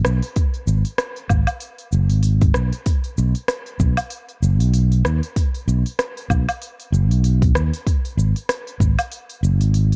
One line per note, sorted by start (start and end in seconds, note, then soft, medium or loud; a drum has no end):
0.05 0.20 B1 medium
0.05 cross-stick medium
0.05 shaker medium
0.22 open hi-hat soft
0.22 shaker soft
0.36 kick loud
0.36 open hi-hat medium
0.36 shaker soft
0.54 open hi-hat soft
0.54 shaker soft
0.67 0.82 G#1 loud
0.67 shaker medium
0.85 open hi-hat soft
0.85 shaker soft
0.98 cross-stick medium
0.98 open hi-hat medium
0.98 shaker soft
1.16 open hi-hat soft
1.16 shaker soft
1.29 1.45 G#1 loud
1.29 kick loud
1.29 low woodblock medium
1.29 shaker medium
1.47 open hi-hat soft
1.47 low woodblock medium
1.47 shaker soft
1.60 open hi-hat soft
1.60 shaker soft
1.78 open hi-hat soft
1.78 shaker soft
1.92 2.11 F#1 medium
1.92 shaker medium
2.10 2.51 G#1 medium
2.10 open hi-hat soft
2.10 shaker soft
2.23 open hi-hat medium
2.23 shaker soft
2.41 kick loud
2.41 open hi-hat soft
2.41 shaker soft
2.54 2.70 B1 medium
2.54 cross-stick medium
2.54 shaker medium
2.73 open hi-hat soft
2.73 shaker soft
2.86 kick loud
2.86 open hi-hat medium
2.86 shaker soft
3.04 open hi-hat soft
3.04 shaker soft
3.18 3.33 B1 medium
3.18 shaker medium
3.35 open hi-hat soft
3.35 shaker soft
3.48 cross-stick medium
3.48 open hi-hat medium
3.48 shaker soft
3.66 open hi-hat soft
3.66 shaker soft
3.80 3.95 B1 loud
3.80 kick loud
3.80 shaker medium
3.97 open hi-hat soft
3.97 low woodblock medium
3.97 shaker soft
4.10 open hi-hat medium
4.10 shaker soft
4.29 open hi-hat soft
4.29 shaker soft
4.42 4.61 F#1 medium
4.42 shaker medium
4.60 5.02 B1 loud
4.60 open hi-hat soft
4.60 shaker soft
4.74 open hi-hat medium
4.74 shaker soft
4.92 open hi-hat soft
4.92 shaker soft
5.05 5.20 D#2 medium
5.05 cross-stick medium
5.05 shaker medium
5.23 open hi-hat soft
5.23 shaker soft
5.36 kick loud
5.36 open hi-hat medium
5.36 shaker soft
5.54 open hi-hat soft
5.54 shaker soft
5.68 5.82 B1 loud
5.68 shaker medium
5.86 open hi-hat soft
5.86 shaker soft
5.99 cross-stick medium
5.99 open hi-hat medium
5.99 shaker soft
6.17 open hi-hat soft
6.17 shaker soft
6.30 6.45 B1 loud
6.30 kick medium
6.30 low woodblock medium
6.30 shaker medium
6.49 open hi-hat soft
6.49 low woodblock medium
6.49 shaker soft
6.62 open hi-hat medium
6.62 shaker soft
6.80 open hi-hat soft
6.80 shaker soft
6.92 7.10 F#1 medium
6.92 shaker medium
7.10 7.51 B1 loud
7.10 open hi-hat soft
7.10 shaker soft
7.24 open hi-hat medium
7.24 shaker soft
7.42 kick loud
7.42 open hi-hat soft
7.42 shaker soft
7.55 7.70 D#2 medium
7.55 cross-stick medium
7.55 shaker medium
7.74 open hi-hat soft
7.74 shaker soft
7.87 kick loud
7.87 open hi-hat medium
7.87 shaker soft
8.05 open hi-hat soft
8.05 shaker soft
8.17 8.32 G#1 loud
8.17 shaker medium
8.36 open hi-hat soft
8.36 shaker soft
8.49 cross-stick medium
8.49 open hi-hat medium
8.49 shaker soft
8.67 open hi-hat soft
8.67 shaker soft
8.80 8.95 G#1 loud
8.80 kick medium
8.80 shaker medium
8.99 open hi-hat soft
8.99 low woodblock medium
8.99 shaker soft
9.12 open hi-hat medium
9.12 shaker soft
9.29 open hi-hat soft
9.29 shaker soft
9.43 9.60 F#1 medium
9.43 shaker medium
9.60 9.96 G#1 medium
9.60 open hi-hat soft
9.60 shaker soft
9.74 open hi-hat medium
9.74 shaker soft
9.92 open hi-hat soft